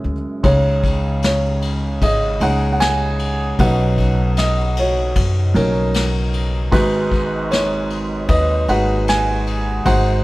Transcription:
Already playing: F#1 F#2 G#3 C#4 F#4 G#4 C#5 E5
0.04 D2
0.43 C#2 C#3 G#3 C#4 D#4 C#5, kick, ride
0.84 kick, ride
1.22 C#5, snare, ride
1.62 ride
2.02 G#1 G#4 D#5, kick, ride
2.40 C#2 G#3 C#4 D#4 C#5 F#5, ride
2.72 F#5
2.80 G#5, snare, ride
3.19 ride
3.59 B1 B2 F#3 C#4 D#4 B4 D#5 F#5, kick, ride
3.98 kick, ride
4.37 D#5, snare, ride
4.77 C#5, ride
4.81 F#4
5.15 F#2, kick, ride
5.54 B1 F#3 C#4 D#4 A#4, ride
5.94 snare, ride
6.34 ride
6.71 G#1 G#2 G#3 D#4 F#4 B4, kick, ride
7.12 kick, ride
7.51 C#5, snare, ride
7.90 ride
8.29 D#2 B4 D#5, kick, ride
8.68 G#1 G#3 D#4 F#4 B4 F#5, ride
9.08 G#5, snare, ride
9.47 ride
9.85 G#1 G#2 G#3 D#4 F#4 C5 F#5, kick, ride

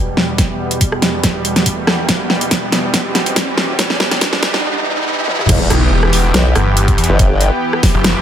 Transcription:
Already playing: E2 B2 G3, riser
0.17 snare
0.38 kick, snare, closed hi-hat
0.71 closed hi-hat
0.81 kick, closed hi-hat
0.92 cross-stick
1.02 snare, closed hi-hat
1.24 kick, snare, closed hi-hat
1.45 closed hi-hat
1.56 snare, closed hi-hat
1.66 kick, closed hi-hat
1.87 cross-stick, snare
2.09 kick, snare, closed hi-hat
2.30 snare
2.41 closed hi-hat
2.51 kick, snare, closed hi-hat
2.72 snare, closed hi-hat
2.94 kick, snare, closed hi-hat
3.15 snare, closed hi-hat
3.26 closed hi-hat
3.36 kick, snare, closed hi-hat
3.58 snare
3.79 kick, snare, closed hi-hat
3.90 snare
4.00 snare
4.11 snare, closed hi-hat
4.21 kick, snare, closed hi-hat
4.33 snare
4.43 snare, closed hi-hat
4.54 snare
5.28 high tom
5.39 mid tom
5.49 E1 E3 B3 G4, kick, closed hi-hat, crash, impact
5.70 B1, cross-stick, closed hi-hat
5.92 E1
6.03 cross-stick
6.13 open hi-hat
6.34 B1, snare, closed hi-hat
6.55 G1, cross-stick, closed hi-hat
6.77 closed hi-hat
6.88 kick, closed hi-hat
6.98 E2, closed hi-hat
7.04 closed hi-hat
7.09 G1
7.19 kick, closed hi-hat
7.41 closed hi-hat
7.73 cross-stick
7.83 kick, snare, open hi-hat
7.94 F#1
8.04 snare, closed hi-hat

